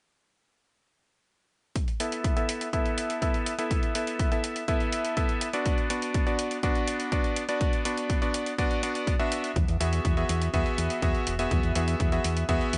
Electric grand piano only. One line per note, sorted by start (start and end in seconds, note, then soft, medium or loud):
2.00 2.34 B3 medium
2.00 2.34 E4 medium
2.00 2.34 A4 medium
2.00 2.34 E5 medium
2.37 2.66 B3 medium
2.37 2.66 E4 medium
2.37 2.66 A4 medium
2.37 2.66 E5 medium
2.73 3.19 B3 medium
2.73 3.19 E4 medium
2.73 3.19 A4 medium
2.73 3.19 E5 loud
3.22 3.52 B3 medium
3.22 3.52 E4 medium
3.22 3.52 A4 medium
3.22 3.52 E5 medium
3.59 3.92 B3 medium
3.59 3.92 E4 medium
3.59 3.92 A4 medium
3.59 3.92 E5 medium
3.95 4.29 B3 medium
3.95 4.29 E4 medium
3.95 4.29 A4 medium
3.95 4.29 E5 medium
4.32 4.62 B3 medium
4.32 4.62 E4 medium
4.32 4.62 A4 medium
4.32 4.62 E5 medium
4.68 5.14 B3 medium
4.68 5.14 E4 medium
4.68 5.14 A4 medium
4.68 5.14 E5 loud
5.17 5.47 B3 medium
5.17 5.47 E4 medium
5.17 5.47 A4 medium
5.17 5.47 E5 medium
5.54 5.87 B3 medium
5.54 5.87 D4 medium
5.54 5.87 F#4 medium
5.54 5.87 D5 medium
5.90 6.24 B3 medium
5.90 6.24 D4 medium
5.90 6.24 F#4 medium
5.90 6.24 D5 medium
6.27 6.57 B3 medium
6.27 6.57 D4 medium
6.27 6.57 F#4 medium
6.27 6.57 D5 medium
6.63 7.09 B3 medium
6.63 7.09 D4 medium
6.63 7.09 F#4 medium
6.63 7.09 D5 loud
7.12 7.42 B3 medium
7.12 7.42 D4 medium
7.12 7.42 F#4 medium
7.12 7.42 D5 medium
7.49 7.82 B3 medium
7.49 7.82 D4 medium
7.49 7.82 F#4 medium
7.49 7.82 D5 medium
7.85 8.19 B3 medium
7.85 8.19 D4 medium
7.85 8.19 F#4 medium
7.85 8.19 D5 medium
8.22 8.52 B3 medium
8.22 8.52 D4 medium
8.22 8.52 F#4 medium
8.22 8.52 D5 medium
8.58 8.80 B3 medium
8.58 8.80 D4 medium
8.58 8.80 F#4 medium
8.58 8.80 D5 loud
8.83 9.13 B3 medium
8.83 9.13 D4 medium
8.83 9.13 F#4 medium
8.83 9.13 D5 medium
9.19 9.49 B3 medium
9.19 9.49 D4 medium
9.19 9.49 F#4 medium
9.19 9.49 E5 medium
9.80 10.14 B3 medium
9.80 10.14 F#4 medium
9.80 10.14 G#4 medium
9.80 10.14 E5 medium
10.17 10.47 B3 medium
10.17 10.47 F#4 medium
10.17 10.47 G#4 medium
10.17 10.47 E5 medium
10.54 10.99 B3 medium
10.54 10.99 F#4 medium
10.54 10.99 G#4 medium
10.54 10.99 E5 loud
11.02 11.32 B3 medium
11.02 11.32 F#4 medium
11.02 11.32 G#4 medium
11.02 11.32 E5 medium
11.39 11.73 B3 medium
11.39 11.73 F#4 medium
11.39 11.73 G#4 medium
11.39 11.73 E5 medium
11.76 12.09 B3 medium
11.76 12.09 F#4 medium
11.76 12.09 G#4 medium
11.76 12.09 E5 medium
12.12 12.42 B3 medium
12.12 12.42 F#4 medium
12.12 12.42 G#4 medium
12.12 12.42 E5 medium
12.49 12.78 B3 medium
12.49 12.78 F#4 medium
12.49 12.78 G#4 medium
12.49 12.78 E5 loud